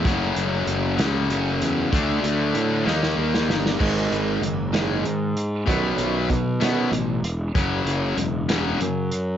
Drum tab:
CC |------------|------------|x-----------|------------|
HH |x-x-x-x-x-x-|x-x-x-------|--x-x-x-x-x-|x-x-x-x-x-x-|
SD |------o-----|------oo-ooo|------o-----|------o-----|
BD |o-----------|o-----------|o-----------|o---o-------|

CC |------------|
HH |x-x-x-x-x-x-|
SD |------o-----|
BD |o-----------|